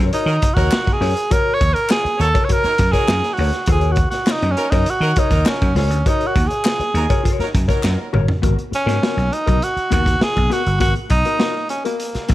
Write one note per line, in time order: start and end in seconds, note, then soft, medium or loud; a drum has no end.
0.00 0.11 F#4 medium
0.00 0.12 A#4 medium
0.00 0.12 C#5 medium
0.11 0.55 D#4 medium
0.11 0.27 F#4 medium
0.11 0.28 A#4 medium
0.11 0.28 C#5 medium
0.11 muted slap bass stroke soft
0.11 closed hi-hat medium
0.26 0.38 D#3 loud
0.26 0.37 F#3 medium
0.26 0.36 D#4 medium
0.26 0.37 A#4 medium
0.26 closed hi-hat soft
0.42 muted clean electric guitar stroke soft
0.42 kick loud
0.42 closed hi-hat medium
0.54 0.68 D#2 medium
0.54 0.99 F#3 medium
0.54 1.00 D#4 medium
0.54 0.94 F#4 medium
0.54 0.99 A#4 loud
0.54 0.69 C#5 medium
0.54 kick medium
0.54 snare soft
0.54 closed hi-hat soft
0.58 0.69 F#4 soft
0.58 0.69 A#4 medium
0.71 snare loud
0.71 clap loud
0.86 muted clean electric guitar stroke soft
0.86 muted slap bass stroke soft
0.86 kick medium
0.86 closed hi-hat soft
0.93 1.34 G#4 medium
1.01 1.13 F#2 medium
1.01 1.16 F#4 medium
1.01 1.16 A#4 medium
1.01 1.15 C#5 medium
1.01 snare soft
1.01 open hi-hat medium
1.16 muted clean electric guitar stroke soft
1.16 closed hi-hat medium
1.31 1.58 F#4 loud
1.31 1.59 A#4 medium
1.31 1.55 A#4 loud
1.31 1.59 C#5 loud
1.31 kick loud
1.31 closed hi-hat medium
1.54 1.75 C#5 loud
1.61 1.72 D#2 loud
1.61 kick medium
1.61 closed hi-hat medium
1.74 1.91 A#4 loud
1.74 muted clean electric guitar stroke soft
1.74 closed hi-hat medium
1.89 2.23 G#4 loud
1.89 muted clean electric guitar stroke soft
1.89 snare loud
1.89 clap loud
2.04 muted clean electric guitar stroke soft
2.04 muted slap bass stroke soft
2.04 closed hi-hat soft
2.18 2.31 D#2 loud
2.18 2.28 A#3 medium
2.18 2.28 F#4 medium
2.18 2.46 A4 loud
2.18 2.28 C#5 medium
2.18 closed hi-hat medium
2.35 2.48 F#4 medium
2.35 2.49 A#4 medium
2.35 2.49 C#5 medium
2.35 kick loud
2.35 closed hi-hat medium
2.44 2.54 C#5 medium
2.49 2.64 F#4 medium
2.49 2.64 A#4 medium
2.49 2.93 A#4 loud
2.49 2.65 C#5 loud
2.49 kick medium
2.49 closed hi-hat medium
2.64 2.74 F#3 medium
2.64 2.74 D#4 medium
2.64 2.74 A#4 medium
2.64 muted slap bass stroke soft
2.64 snare soft
2.64 closed hi-hat soft
2.78 2.90 F#2 loud
2.78 muted clean electric guitar stroke soft
2.78 kick loud
2.78 snare soft
2.78 closed hi-hat medium
2.92 3.36 F#3 medium
2.92 3.36 D#4 medium
2.92 3.06 F#4 medium
2.92 3.35 G#4 loud
2.92 3.35 A#4 medium
2.92 3.05 A#4 medium
2.92 3.05 C#5 medium
2.92 kick medium
2.92 snare soft
2.92 closed hi-hat soft
3.08 3.20 F#2 medium
3.08 snare loud
3.08 clap loud
3.23 muted clean electric guitar stroke soft
3.23 snare soft
3.23 closed hi-hat soft
3.33 3.70 F#4 medium
3.37 3.50 D2 medium
3.37 3.54 F#4 medium
3.37 3.53 A#4 medium
3.37 3.52 C#5 medium
3.37 open hi-hat medium
3.53 muted clean electric guitar stroke soft
3.53 snare soft
3.53 closed hi-hat medium
3.66 4.02 D#2 loud
3.66 3.79 F4 medium
3.66 3.80 A4 medium
3.66 3.80 C5 medium
3.66 kick loud
3.66 closed hi-hat medium
3.72 3.93 G#4 loud
3.79 3.95 F#4 medium
3.79 3.96 A#4 medium
3.79 3.96 C#5 medium
3.79 closed hi-hat soft
3.92 4.09 F#4 medium
3.96 kick medium
3.96 closed hi-hat medium
4.10 4.33 F#4 medium
4.10 muted clean electric guitar stroke soft
4.10 snare soft
4.10 closed hi-hat medium
4.27 muted clean electric guitar stroke soft
4.27 snare loud
4.27 clap medium
4.31 4.53 D#4 medium
4.42 4.54 F#2 medium
4.42 muted clean electric guitar stroke medium
4.42 closed hi-hat soft
4.52 4.72 C#4 medium
4.57 4.66 F#3 medium
4.57 4.66 D#4 medium
4.57 4.67 A#4 medium
4.57 closed hi-hat medium
4.71 4.83 F#2 medium
4.71 4.91 D#4 loud
4.71 4.87 F#4 medium
4.71 4.87 A#4 medium
4.71 4.87 C#5 medium
4.71 kick loud
4.71 snare soft
4.71 closed hi-hat medium
4.86 5.20 F#4 loud
4.86 muted slap bass stroke medium
4.86 muted clean electric guitar stroke soft
4.86 closed hi-hat medium
5.01 5.12 D#3 loud
5.01 5.12 F#3 medium
5.01 5.11 D#4 medium
5.01 5.11 A#4 medium
5.01 muted clean electric guitar stroke soft
5.01 closed hi-hat soft
5.16 5.50 D#4 medium
5.16 5.31 F#4 medium
5.16 5.32 A#4 medium
5.16 5.31 C#5 loud
5.16 kick loud
5.16 closed hi-hat medium
5.31 5.42 D#2 loud
5.31 5.74 F#3 medium
5.31 5.74 D#4 medium
5.31 5.74 A#4 medium
5.31 kick medium
5.31 snare soft
5.31 closed hi-hat medium
5.46 5.77 C#4 medium
5.46 snare loud
5.46 clap loud
5.62 5.73 F#2 medium
5.62 muted clean electric guitar stroke soft
5.62 kick medium
5.62 closed hi-hat soft
5.75 5.90 C#2 medium
5.75 6.09 C#4 medium
5.75 5.96 F#4 medium
5.75 5.91 A#4 medium
5.75 5.90 C#5 loud
5.75 snare soft
5.75 open hi-hat medium
5.90 6.01 D2 loud
5.90 muted clean electric guitar stroke soft
5.90 closed hi-hat medium
6.06 6.28 D#4 medium
6.06 6.33 F#4 medium
6.06 6.33 A#4 medium
6.06 6.34 C#5 loud
6.06 kick loud
6.06 closed hi-hat medium
6.21 closed hi-hat soft
6.27 6.49 F#4 medium
6.35 6.47 D#2 loud
6.35 kick loud
6.35 closed hi-hat medium
6.47 7.35 G#4 medium
6.47 muted clean electric guitar stroke soft
6.47 closed hi-hat medium
6.65 muted clean electric guitar stroke soft
6.65 snare loud
6.65 clap loud
6.79 muted slap bass stroke soft
6.79 muted clean electric guitar stroke medium
6.79 closed hi-hat soft
6.94 7.05 D#2 loud
6.94 7.05 F#3 medium
6.94 7.05 D#4 medium
6.94 7.05 A#4 medium
6.94 closed hi-hat medium
7.10 7.22 F#4 medium
7.10 7.23 A#4 medium
7.10 7.23 C#5 medium
7.10 kick loud
7.10 closed hi-hat soft
7.23 7.44 F#4 loud
7.23 7.44 A#4 loud
7.23 7.44 C#5 loud
7.23 kick medium
7.23 closed hi-hat medium
7.39 7.50 F#3 medium
7.39 7.49 D#4 medium
7.39 7.49 A#4 medium
7.39 muted slap bass stroke soft
7.39 snare soft
7.39 closed hi-hat soft
7.54 7.65 F#2 medium
7.54 muted clean electric guitar stroke soft
7.54 kick loud
7.54 snare soft
7.54 closed hi-hat medium
7.68 8.11 F#3 medium
7.68 8.11 D#4 medium
7.68 7.80 F#4 medium
7.68 8.11 A#4 medium
7.68 7.80 A#4 medium
7.68 7.80 C#5 medium
7.68 kick medium
7.68 snare soft
7.68 closed hi-hat soft
7.83 7.95 F#2 loud
7.83 snare medium
7.83 clap loud
7.98 muted clean electric guitar stroke soft
8.13 8.25 G1 medium
8.13 8.28 F#4 medium
8.13 8.28 A#4 loud
8.13 8.27 C#5 loud
8.13 mid tom medium
8.28 muted clean electric guitar stroke medium
8.28 floor tom medium
8.42 8.54 G#1 loud
8.42 8.57 B3 medium
8.42 8.57 F#4 loud
8.42 8.56 A#4 loud
8.42 kick loud
8.42 closed hi-hat medium
8.57 muted clean electric guitar stroke soft
8.57 closed hi-hat soft
8.71 9.35 C#4 medium
8.71 muted clean electric guitar stroke soft
8.71 muted slap bass stroke soft
8.71 closed hi-hat medium
8.86 8.98 G#2 medium
8.86 8.99 B3 soft
8.86 8.98 F#4 medium
8.86 8.98 A#4 medium
8.86 snare soft
8.86 closed hi-hat soft
9.02 9.17 B3 medium
9.02 9.17 F#4 medium
9.02 9.17 A#4 medium
9.02 snare loud
9.17 9.28 B1 medium
9.17 closed hi-hat soft
9.31 9.65 D#4 loud
9.31 muted clean electric guitar stroke soft
9.31 closed hi-hat medium
9.46 9.59 B1 medium
9.46 9.58 B3 medium
9.46 9.58 F#4 medium
9.46 9.58 A#4 medium
9.46 kick medium
9.46 closed hi-hat medium
9.61 9.92 F#4 loud
9.61 muted clean electric guitar stroke soft
9.61 closed hi-hat medium
9.76 muted slap bass stroke soft
9.76 closed hi-hat soft
9.90 10.15 D#2 medium
9.90 10.02 B3 medium
9.90 10.03 F#4 medium
9.90 10.24 F#4 loud
9.90 10.03 A#4 medium
9.90 kick loud
9.90 closed hi-hat medium
10.05 muted clean electric guitar stroke soft
10.05 kick medium
10.05 snare soft
10.05 closed hi-hat medium
10.20 10.54 G#4 loud
10.20 muted clean electric guitar stroke soft
10.20 muted slap bass stroke soft
10.20 snare loud
10.35 10.48 B1 medium
10.35 muted clean electric guitar stroke soft
10.35 kick medium
10.35 closed hi-hat soft
10.50 10.65 B3 medium
10.50 10.65 F#4 medium
10.50 10.80 F#4 loud
10.50 10.64 A#4 medium
10.50 snare soft
10.50 closed hi-hat medium
10.65 10.81 G1 medium
10.65 muted clean electric guitar stroke medium
10.65 closed hi-hat soft
10.80 10.92 G#1 loud
10.80 10.95 B3 medium
10.80 10.95 F#4 medium
10.80 10.94 F#4 loud
10.80 10.94 A#4 medium
10.80 kick loud
10.80 closed hi-hat medium
10.95 muted clean electric guitar stroke medium
10.95 closed hi-hat soft
11.09 11.22 B1 medium
11.09 11.66 D#4 loud
11.09 muted clean electric guitar stroke soft
11.09 kick loud
11.09 closed hi-hat medium
11.25 11.37 B3 soft
11.25 11.37 F#4 medium
11.25 11.37 A#4 medium
11.25 closed hi-hat soft
11.39 11.54 B3 medium
11.39 11.54 F#4 medium
11.39 11.54 A#4 medium
11.39 snare loud
11.69 11.84 C#4 medium
11.69 muted clean electric guitar stroke soft
11.69 closed hi-hat medium
11.85 12.34 A#3 medium
11.85 11.96 B3 medium
11.85 11.96 F#4 medium
11.85 11.96 A#4 medium
11.85 closed hi-hat medium
12.00 closed hi-hat medium
12.15 muted clean electric guitar stroke soft
12.15 muted slap bass stroke soft
12.15 snare soft
12.15 closed hi-hat soft
12.28 12.34 B1 medium
12.28 12.34 B3 medium
12.28 12.34 F#4 medium
12.28 12.34 A#4 medium
12.28 kick loud
12.28 snare soft
12.28 closed hi-hat medium